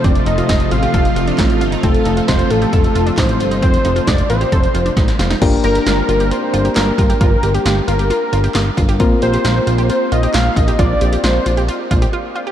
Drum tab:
CC |----------------|----------------|----------------|x---------------|
HH |xxxxxxxxxxxxxxxx|xxxxxxxxxxxxxxxx|xxxxxxxxxxxxxxxx|x-xxx-xxx-xxx-xx|
CP |------------x---|------------x---|----------------|------------x---|
SD |----o-------o---|----o-------o---|----o-------oooo|----o-------o---|
BD |o---o---o---o---|o---o---o---o---|o---o---o---o---|o-------------o-|

CC |----------------|----------------|----------------|
HH |x-xxx-xxx-xxx-xx|x-xxx-xxx-xxx-xx|x-xxx-xxx-xx----|
CP |------------x---|------------x---|----------------|
SD |----o-------o---|----o-------o---|----o-----------|
BD |o-------------o-|o-------------o-|o---------o-----|